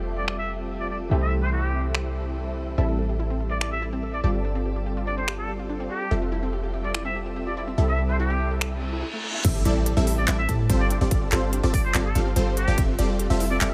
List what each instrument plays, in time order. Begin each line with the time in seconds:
Already playing: 808-style bass F1, grand piano F3 A3 G4 E5, supersaw synth G3 C4 F4 A4 E5
0.18 muted trumpet D5
0.28 muted trumpet D5, finger snap
0.39 muted trumpet E5
0.80 muted trumpet D5
0.90 muted trumpet D5
1.09 808-style bass C2, grand piano E3 A3 C4, supersaw synth G3 C4 E4 A4 E5
1.13 grand piano G4
1.22 muted trumpet E5
1.42 muted trumpet C5
1.53 muted trumpet G4
1.95 finger snap
2.78 808-style bass A1, supersaw synth G3 C4 E4 A4 E5, synth arpeggio sound A4
2.89 synth arpeggio sound A4
2.99 synth arpeggio sound A4
3.09 synth arpeggio sound G4
3.20 synth arpeggio sound E4
3.30 synth arpeggio sound C4
3.40 synth arpeggio sound A4
3.51 synth arpeggio sound A4, muted trumpet D5
3.61 synth arpeggio sound A4, muted trumpet D5, finger snap
3.72 synth arpeggio sound G4, muted trumpet E5
3.82 synth arpeggio sound E4
3.93 synth arpeggio sound C4
4.03 synth arpeggio sound A4
4.13 synth arpeggio sound A4, muted trumpet D5
4.24 808-style bass G1, supersaw synth G3 C4 F4 A4 D5, synth arpeggio sound G4, muted trumpet D5
4.34 synth arpeggio sound F4
4.45 synth arpeggio sound D4
4.55 synth arpeggio sound C4
4.65 synth arpeggio sound G4
4.76 synth arpeggio sound G4
4.86 synth arpeggio sound G4
4.97 synth arpeggio sound F4
5.07 synth arpeggio sound D4, muted trumpet D5
5.17 synth arpeggio sound C4, muted trumpet C5
5.28 synth arpeggio sound G4, finger snap
5.38 synth arpeggio sound G4, muted trumpet A4
5.49 synth arpeggio sound G4
5.59 synth arpeggio sound F4
5.69 synth arpeggio sound D4
5.80 synth arpeggio sound C4
5.90 muted trumpet G4, synth arpeggio sound G4
6.01 synth arpeggio sound G4
6.11 808-style bass F1, supersaw synth G3 C4 F4 A4 E5, synth arpeggio sound G4
6.22 synth arpeggio sound F4
6.32 synth arpeggio sound E4
6.43 synth arpeggio sound C4
6.53 synth arpeggio sound G4
6.63 synth arpeggio sound G4
6.74 synth arpeggio sound G4
6.84 synth arpeggio sound F4, muted trumpet D5
6.94 synth arpeggio sound E4, muted trumpet D5, finger snap
7.05 synth arpeggio sound C4, muted trumpet E5
7.15 synth arpeggio sound G4
7.26 synth arpeggio sound G4
7.36 synth arpeggio sound G4
7.47 synth arpeggio sound F4, muted trumpet D5
7.57 synth arpeggio sound E4, muted trumpet D5
7.68 synth arpeggio sound C4
7.78 808-style bass C2, supersaw synth G3 C4 E4 A4 E5, synth arpeggio sound A4
7.88 synth arpeggio sound A4, muted trumpet E5
7.99 synth arpeggio sound A4
8.09 synth arpeggio sound G4, muted trumpet C5
8.19 synth arpeggio sound E4, muted trumpet G4
8.30 synth arpeggio sound C4
8.40 synth arpeggio sound A4
8.51 synth arpeggio sound A4
8.61 synth arpeggio sound A4, finger snap, reverse cymbal
8.72 synth arpeggio sound G4
8.82 synth arpeggio sound C4
8.93 synth arpeggio sound E4
9.03 synth arpeggio sound E4
9.13 synth arpeggio sound A3
9.24 synth arpeggio sound A3
9.34 synth arpeggio sound E5
9.44 808-style bass A1, supersaw synth G3 C4 E4 A4 E5, synth arpeggio sound A4, synth pluck E5, kick, closed hi-hat, crash, impact
9.55 synth arpeggio sound G4
9.65 808-style bass A1, supersaw synth G3 C4 E4 A4 D5, synth arpeggio sound E4, synth pluck D5, closed hi-hat
9.76 synth arpeggio sound C4
9.86 synth arpeggio sound A4, closed hi-hat
9.97 808-style bass A1, supersaw synth G3 C4 E4 A4 E5, synth arpeggio sound A4, synth pluck E5
10.07 synth arpeggio sound A4, open hi-hat
10.18 synth arpeggio sound G4, muted trumpet D5
10.28 808-style bass A1, supersaw synth G3 C4 E4 A4 E5, synth arpeggio sound E4, muted trumpet D5, synth pluck E5, clap, closed hi-hat
10.39 synth arpeggio sound C4, muted trumpet E5
10.49 808-style bass A2, supersaw synth G3 C4 E4 A4 A5, synth arpeggio sound A4, synth pluck A5, kick, closed hi-hat
10.59 synth arpeggio sound A4
10.70 808-style bass G1, supersaw synth G3 C4 F4 A4 C5, synth arpeggio sound A4, synth pluck C5, kick, closed hi-hat
10.80 synth arpeggio sound G4, muted trumpet D5
10.90 synth arpeggio sound D4, muted trumpet D5, closed hi-hat
11.01 808-style bass G1, supersaw synth G3 C4 F4 A4 D5, synth arpeggio sound C4, synth pluck D5
11.11 808-style bass G1, supersaw synth G3 C4 F4 A4 D5, synth arpeggio sound G4, synth pluck D5, kick, closed hi-hat
11.22 synth arpeggio sound G4
11.32 808-style bass G1, supersaw synth G3 C4 F4 A4 C5, synth arpeggio sound G4, synth pluck C5, clap, closed hi-hat
11.43 synth arpeggio sound F4
11.53 synth arpeggio sound D4, closed hi-hat
11.63 808-style bass G1, supersaw synth G3 C4 F4 A4 D5, synth arpeggio sound C4, synth pluck D5
11.74 synth arpeggio sound G4, muted trumpet D5, kick, open hi-hat
11.84 synth arpeggio sound G4, muted trumpet C5
11.94 808-style bass G1, supersaw synth G3 C4 F4 A4 D5, synth arpeggio sound G4, synth pluck D5, clap, closed hi-hat
12.05 synth arpeggio sound F4, muted trumpet A4
12.15 808-style bass G1, supersaw synth G3 C4 F4 A4 F5, synth arpeggio sound D4, synth pluck F5, closed hi-hat
12.26 synth arpeggio sound C4
12.36 808-style bass G1, supersaw synth G3 C4 F4 A4 C5, synth arpeggio sound G4, synth pluck C5, closed hi-hat
12.47 synth arpeggio sound G4
12.57 synth arpeggio sound G4, muted trumpet G4, closed hi-hat
12.68 808-style bass G1, supersaw synth G3 C4 F4 A4 D5, synth arpeggio sound F4, synth pluck D5
12.78 808-style bass F1, supersaw synth G3 C4 F4 A4 E5, synth arpeggio sound E4, synth pluck E5, kick, closed hi-hat
12.88 synth arpeggio sound C4
12.99 808-style bass F1, supersaw synth G3 C4 F4 A4 D5, synth arpeggio sound G4, synth pluck D5, closed hi-hat
13.09 synth arpeggio sound G4
13.19 synth arpeggio sound G4, closed hi-hat
13.30 808-style bass F1, supersaw synth G3 C4 F4 A4 E5, synth arpeggio sound F4, synth pluck E5
13.40 synth arpeggio sound E4, open hi-hat
13.51 synth arpeggio sound C4, muted trumpet D5
13.61 808-style bass F1, supersaw synth G3 C4 F4 A4 E5, synth arpeggio sound G4, muted trumpet D5, synth pluck E5, clap, closed hi-hat